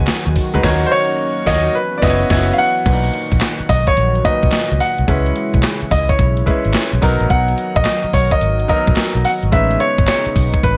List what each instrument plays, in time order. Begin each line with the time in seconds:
Already playing: analog synth pad D#3 F#3 G#3 B3 F#4, grand piano G#3 D#4 F#4 B4 G#5
0.07 muted fingered electric bass stroke, snare, clap, closed hi-hat
0.26 fingered electric bass D#2, closed hi-hat
0.36 kick, open hi-hat
0.54 fingered electric bass D2, grand piano G#3 D#4 F#4 B4, closed hi-hat
0.63 fingered electric bass D#2, grand piano A#3 D#4 C#5, analog synth pad A#3 C#4, kick, snare, crash
0.70 grand piano F#4
0.86 grand piano C5
0.92 grand piano C#5
1.46 fingered electric bass D#2, grand piano A#3 D#4 F#4 C#5 D#5, kick, snare
1.75 analog synth pad E3 B3, grand piano B4
1.98 grand piano D5
2.02 fingered electric bass F#1, grand piano B3 E4 F#4 B4 D#5, kick, snare
2.09 grand piano C#5
2.30 fingered electric bass F#1, grand piano B3 E4 F#4 C#5, kick, snare, crash
2.53 grand piano F5
2.58 grand piano F#5
2.85 fingered electric bass B1, grand piano A#2 D4 F#4 B4, analog synth pad D#3 F#3 F#4, kick, closed hi-hat, crash, tambourine
2.92 grand piano D#4
3.04 closed hi-hat
3.13 closed hi-hat
3.32 fingered electric bass A#1, kick, closed hi-hat
3.41 snare, clap, closed hi-hat, tambourine
3.59 muted fingered electric bass stroke, closed hi-hat
3.69 fingered electric bass B1, grand piano D#5, kick, open hi-hat, tambourine
3.87 grand piano C#5, kick, closed hi-hat
3.97 fingered electric bass A#1, closed hi-hat, tambourine
4.15 closed hi-hat
4.24 grand piano A#2 D#4 F#4 B4 D#5, kick, closed hi-hat, tambourine
4.43 fingered electric bass B1, kick, closed hi-hat
4.52 snare, clap, closed hi-hat, tambourine
4.71 fingered electric bass C#2, closed hi-hat
4.80 grand piano F#5, open hi-hat, tambourine
4.98 fingered electric bass C2, closed hi-hat
5.08 fingered electric bass C#2, analog synth pad C#3 E3 G#3 E4, grand piano G#3 C#4 E4 B4, kick, closed hi-hat, tambourine
5.26 closed hi-hat
5.36 closed hi-hat
5.54 fingered electric bass B1, kick, closed hi-hat
5.63 snare, clap, closed hi-hat, tambourine
5.82 muted fingered electric bass stroke, closed hi-hat
5.91 fingered electric bass C#2, grand piano D#5, kick, open hi-hat, tambourine
6.09 grand piano C#5, kick, closed hi-hat
6.19 fingered electric bass B1, kick, closed hi-hat, tambourine
6.37 closed hi-hat
6.46 grand piano G#3 C#4 E4 B4, kick, closed hi-hat, tambourine
6.64 fingered electric bass G#1, closed hi-hat
6.74 snare, clap, closed hi-hat, tambourine
6.93 fingered electric bass B1, closed hi-hat
7.02 fingered electric bass B1, analog synth pad D#3 F#3 F#4 A#4, grand piano F#3 B3 D#4 A#4, kick, open hi-hat, tambourine
7.20 fingered electric bass A#1, closed hi-hat
7.30 fingered electric bass B1, grand piano F#5, kick, closed hi-hat, tambourine
7.48 closed hi-hat
7.58 closed hi-hat
7.76 fingered electric bass A#1, grand piano D#5, kick, closed hi-hat
7.85 snare, clap, closed hi-hat, tambourine
8.04 muted fingered electric bass stroke, closed hi-hat
8.14 fingered electric bass B1, grand piano C#5, kick, open hi-hat, tambourine
8.31 grand piano D#5, kick, closed hi-hat
8.41 fingered electric bass G#1, closed hi-hat, tambourine
8.60 closed hi-hat
8.68 grand piano F#3 B3 D#4 A#4 D#5, kick, closed hi-hat, tambourine
8.87 fingered electric bass A#1, kick, closed hi-hat
8.96 muted fingered electric bass stroke, snare, clap, closed hi-hat, tambourine
9.15 fingered electric bass B1, closed hi-hat
9.25 grand piano F#5, open hi-hat, tambourine
9.43 fingered electric bass G#1, closed hi-hat
9.52 fingered electric bass A1, analog synth pad C#3 G#3 B3 D#4, grand piano G#3 C#4 D#4 B4 E5, kick, closed hi-hat, tambourine
9.71 closed hi-hat
9.80 grand piano C#5, closed hi-hat
9.98 fingered electric bass G#1, kick, closed hi-hat
10.07 grand piano C#5, snare, clap, closed hi-hat, tambourine
10.26 muted fingered electric bass stroke, closed hi-hat
10.36 fingered electric bass B1, kick, open hi-hat, tambourine
10.54 kick, closed hi-hat
10.63 fingered electric bass A1, grand piano B4, kick, closed hi-hat, tambourine